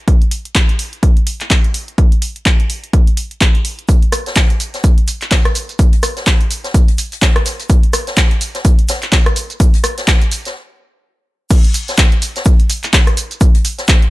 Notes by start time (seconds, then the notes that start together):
0.08 kick, closed hi-hat
0.22 closed hi-hat
0.31 open hi-hat
0.45 closed hi-hat
0.55 kick, clap, closed hi-hat
0.69 closed hi-hat
0.79 open hi-hat
0.93 closed hi-hat
1.03 kick, closed hi-hat
1.17 closed hi-hat
1.27 open hi-hat
1.41 clap, closed hi-hat
1.50 kick, clap, closed hi-hat
1.64 closed hi-hat
1.74 open hi-hat
1.88 closed hi-hat
1.98 kick, closed hi-hat
2.12 closed hi-hat
2.22 open hi-hat
2.36 closed hi-hat
2.46 kick, clap, closed hi-hat
2.60 closed hi-hat
2.70 open hi-hat
2.84 closed hi-hat
2.93 kick, closed hi-hat
3.07 closed hi-hat
3.17 open hi-hat
3.31 closed hi-hat
3.41 kick, clap, closed hi-hat
3.55 closed hi-hat
3.65 open hi-hat
3.79 closed hi-hat
3.89 kick, closed hi-hat, shaker
4.02 closed hi-hat
4.12 cross-stick, open hi-hat, shaker
4.26 snare, closed hi-hat, shaker
4.35 kick, snare, clap, closed hi-hat, shaker
4.50 closed hi-hat
4.60 open hi-hat, shaker
4.74 snare, closed hi-hat, shaker
4.84 kick, closed hi-hat, shaker
4.98 closed hi-hat
5.08 open hi-hat, shaker
5.22 clap, closed hi-hat, shaker
5.31 kick, snare, clap, closed hi-hat, shaker
5.45 cross-stick, closed hi-hat
5.55 open hi-hat, shaker
5.69 closed hi-hat, shaker
5.79 kick, closed hi-hat, shaker
5.93 closed hi-hat
6.02 cross-stick, open hi-hat, shaker
6.16 snare, closed hi-hat, shaker
6.26 kick, snare, clap, closed hi-hat, shaker
6.41 closed hi-hat
6.51 open hi-hat, shaker
6.64 snare, closed hi-hat, shaker
6.74 kick, closed hi-hat, shaker
6.88 closed hi-hat
6.98 open hi-hat, shaker
7.12 closed hi-hat, shaker
7.22 kick, snare, clap, closed hi-hat, shaker
7.36 cross-stick, closed hi-hat
7.46 snare, open hi-hat, shaker
7.60 closed hi-hat, shaker
7.69 kick, closed hi-hat, shaker
7.83 closed hi-hat
7.93 cross-stick, open hi-hat, shaker
8.07 snare, closed hi-hat, shaker
8.17 kick, snare, clap, closed hi-hat, shaker
8.31 closed hi-hat
8.41 open hi-hat, shaker
8.55 snare, closed hi-hat, shaker
8.65 kick, closed hi-hat, shaker
8.79 closed hi-hat
8.88 snare, open hi-hat, shaker
9.02 clap, closed hi-hat, shaker
9.12 kick, snare, clap, closed hi-hat, shaker
9.26 cross-stick, closed hi-hat
9.36 open hi-hat, shaker
9.50 closed hi-hat, shaker
9.60 kick, closed hi-hat, shaker
9.74 closed hi-hat, shaker
9.84 cross-stick, open hi-hat, shaker
9.98 snare, closed hi-hat, shaker
10.07 kick, snare, clap, closed hi-hat, shaker
10.21 closed hi-hat, shaker
10.31 open hi-hat, shaker
10.45 snare, closed hi-hat, shaker
11.50 kick, closed hi-hat, crash, shaker
11.64 closed hi-hat
11.74 open hi-hat, shaker
11.88 snare, closed hi-hat, shaker
11.97 kick, snare, clap, closed hi-hat, shaker
12.12 closed hi-hat
12.22 open hi-hat, shaker
12.36 snare, closed hi-hat, shaker
12.45 kick, closed hi-hat, shaker
12.60 closed hi-hat
12.70 open hi-hat, shaker
12.83 clap, closed hi-hat, shaker
12.93 kick, snare, clap, closed hi-hat, shaker
13.07 cross-stick, closed hi-hat
13.17 open hi-hat, shaker
13.31 closed hi-hat, shaker
13.41 kick, closed hi-hat, shaker
13.55 closed hi-hat
13.65 open hi-hat, shaker
13.78 snare, closed hi-hat, shaker
13.87 kick, snare, clap, closed hi-hat, shaker
14.02 closed hi-hat